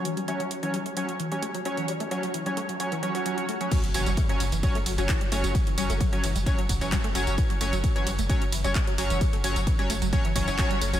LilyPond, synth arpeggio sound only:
\new Staff \with { instrumentName = "Synth arpeggio sound" } { \clef bass \time 4/4 \key fis \phrygian \tempo 4 = 131 e16 g16 a16 fis16 fis16 e16 g16 a16 fis16 fis16 e16 g16 a16 fis16 fis16 e16 | g16 a16 fis16 fis16 e16 g16 a16 fis16 fis16 e16 fis16 fis'16 fis16 fis16 a16 fis16 | fis16 fis16 e16 g16 a16 fis16 fis16 e16 g16 a16 fis16 fis16 e16 g16 a16 fis16 | fis16 e16 g16 a16 fis16 fis16 e16 g16 a16 fis16 fis16 e16 g16 a16 fis16 fis16 |
e16 g16 a16 fis16 fis16 e16 g16 a16 fis16 fis16 e16 g16 a16 fis16 fis16 e16 | g16 a16 fis16 fis16 e16 g16 a16 fis16 fis16 e16 e16 e16 fis16 g16 a16 fis16 | }